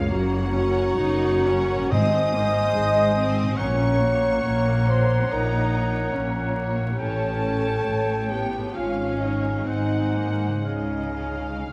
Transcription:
Already playing: F#2 A#3 F4 C#5 F5
0.01 A#4
0.06 A#3 C#5
0.10 F#1 F#2 F#4 F#5 A#5
0.53 C#4 C#5
0.97 F#1 F#2 D#4
1.44 C#4 C#5
1.74 G#2
1.79 G#3
1.83 D#4
1.88 C4 C5 D#5
1.92 G#1 G#2 D#5 G#5 D#6
2.34 A#3 C5
2.75 G#1 G#2 G#3
3.16 C4 C5
3.41 A#2
3.46 C#4
3.50 F#4
3.55 A#1 A#2 C#4 C#5 F#5 A#5 C#6
3.59 C#5
4.00 A#3 C#5
4.44 A#1 A#2
4.87 C5 C#5 C6
5.28 A#1 A#2 D#4 A#4 A#5
5.72 C#5
6.14 A#1 A#2 C#4
6.56 A#3 C#5
6.81 A2
6.86 E4
6.91 G4
6.95 A1 A2 C#4 C#5 G5
7.00 A4 C#5 A5
7.44 C#5
7.85 A1 A2 A3
8.30 B3 G4 C#5 G5
8.57 G#2
8.61 F4
8.66 G#4
8.70 C#4 F4 C#5
8.74 G#1 G#2 C#5 F5 G#5
9.20 D#4 C#5 D#5
9.50 G#2
9.54 F#4
9.58 G#4
9.63 G#2 C4 C5
9.67 G#1 C5 F#5 G#5
10.14 A#3 F#5
10.47 C#3
10.52 F4
10.57 G#4
10.61 C#3 G#3 C#5 D#5 F5
10.66 C#2 D#4 C#5 G#5
11.19 F5
11.67 C#2 C#3 G#3 C#5 F5

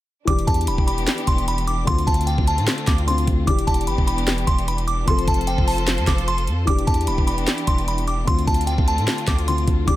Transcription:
0.25 E1 E3 B3 D4 G4 D6, kick, closed hi-hat
0.30 G4
0.39 closed hi-hat
0.47 E2 A5, kick, closed hi-hat
0.54 closed hi-hat
0.61 closed hi-hat
0.67 D1 B5, closed hi-hat
0.78 E1, kick
0.87 B5, closed hi-hat
0.98 closed hi-hat
1.07 snare, clap, closed hi-hat
1.18 closed hi-hat
1.27 E1 C6, kick, closed hi-hat
1.38 closed hi-hat
1.48 B5, closed hi-hat
1.58 closed hi-hat
1.67 D6, closed hi-hat
1.85 D2 D3 A3 C4 F4 C6, kick, closed hi-hat
1.90 F4
1.98 closed hi-hat
2.07 D2 A5, kick, closed hi-hat
2.14 closed hi-hat
2.21 closed hi-hat
2.27 G5, closed hi-hat
2.38 D2, kick
2.47 A5, closed hi-hat
2.58 A2, closed hi-hat
2.67 snare, clap, closed hi-hat
2.78 closed hi-hat
2.87 D2 D6, kick, snare, clap, closed hi-hat
2.98 closed hi-hat
3.07 D3 C4 F4 C6, closed hi-hat
3.18 closed hi-hat
3.27 D2, kick, closed hi-hat
3.45 E1 E3 B3 D4 G4 D6, kick, closed hi-hat
3.50 G4
3.59 closed hi-hat
3.67 E1 A5, kick, closed hi-hat
3.74 closed hi-hat
3.81 closed hi-hat
3.87 G1 B5, closed hi-hat
3.98 E1, kick
4.07 B5, closed hi-hat
4.18 closed hi-hat
4.28 snare, clap, closed hi-hat
4.38 closed hi-hat
4.47 E1 C6, kick, closed hi-hat
4.58 closed hi-hat
4.68 B5, closed hi-hat
4.78 closed hi-hat
4.88 D6, closed hi-hat
5.05 F1 F3 C4 F4 A4 C5 C6, kick, closed hi-hat
5.10 A4
5.19 closed hi-hat
5.28 F1 A5, kick, closed hi-hat
5.34 closed hi-hat
5.41 closed hi-hat
5.47 G5, closed hi-hat
5.58 F1, kick
5.68 A5, open hi-hat
5.78 closed hi-hat
5.87 snare, clap, closed hi-hat
5.98 F2, closed hi-hat
6.07 F1 D6, kick, snare, clap, closed hi-hat
6.18 closed hi-hat
6.28 C6, closed hi-hat
6.38 closed hi-hat
6.47 F2, closed hi-hat
6.65 E1 E3 B3 D4 G4 D6, kick, closed hi-hat
6.70 G4
6.79 closed hi-hat
6.87 E2 A5, kick, closed hi-hat
6.94 closed hi-hat
7.01 closed hi-hat
7.07 D1 B5, closed hi-hat
7.18 E1, kick
7.27 B5, closed hi-hat
7.38 closed hi-hat
7.47 snare, clap, closed hi-hat
7.58 closed hi-hat
7.67 E1 C6, kick, closed hi-hat
7.78 closed hi-hat
7.88 B5, closed hi-hat
7.98 closed hi-hat
8.07 D6, closed hi-hat
8.25 D2 D3 A3 C4 F4 C6, kick, closed hi-hat
8.30 F4
8.39 closed hi-hat
8.47 D2 A5, kick, closed hi-hat
8.54 closed hi-hat
8.61 closed hi-hat
8.67 G5, closed hi-hat
8.78 D2, kick
8.88 A5, closed hi-hat
8.98 A2, closed hi-hat
9.08 snare, clap, closed hi-hat
9.18 closed hi-hat
9.27 D2 D6, kick, snare, clap, closed hi-hat
9.38 closed hi-hat
9.47 D3 C4 F4 C6, closed hi-hat
9.58 closed hi-hat
9.68 D2, kick, closed hi-hat
9.85 E1 E3 B3 D4 G4 D6, kick, closed hi-hat
9.90 G4

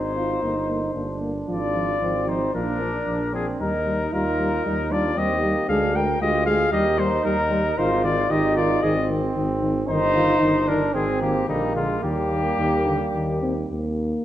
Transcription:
Already playing: G#1 D#4 C5
0.16 C4 F4
0.42 G1 A#3 D#4
0.68 A#3
0.95 G1 A#3 D4
1.21 A#3
1.48 G#1 F3 F4 D5
1.74 F3
2.01 G#1 F3 C4
2.27 F3 D#4 C5
2.53 A#1 F3 A#3 D4 A#4
2.80 F3 D4
3.06 A#1 F3
3.33 F3 C4 G#4
3.60 D#2 G3 D#4 A#4
3.86 G3
4.13 D#2 G3 D#4 F4 A#4
4.39 G3
4.65 D#2 G3 D#4
4.90 G3 D4 F4 D5
5.17 D#2 G3 C4 G4 D#5
5.43 G3 A#3
5.68 D2 G#3 D4 G#4 F5
5.95 G#3 A#4 G5
6.21 D2 G#3 F4 G4 D#5
6.46 G#3 G#4 F5
6.72 D#2 G3 D#4 G4 D#5
6.98 G3 D#4 C5
7.25 D#2 G3 D#4 A#4
7.50 G3
7.78 G#1 D#3 D#4 F4 C5
8.04 D#3 F4 D5
8.30 G#1 D#3 D#4 G4 D#5
8.57 D#3 F4 D5
8.83 G#1 D#3 C4 G#4 D#5
9.09 D#3
9.35 G#1 D#3
9.62 D#3
9.88 G1 D#3 D#4 C5
10.14 D#3 F4
10.41 G1 D#3 D#4
10.67 D#3 D4 A#4
10.94 G#1 D#3 C4 G#4
11.21 D#3 A#3 G4
11.47 A#1 D3 G3 A#3 D#4
11.75 D3 G#3 F4
12.03 D#2 D#3 G3 A#3 G4
12.30 D#3
12.58 D#2 D#3
12.86 D3
13.14 D#2 D#3
13.42 C4
13.70 D#2 A#3

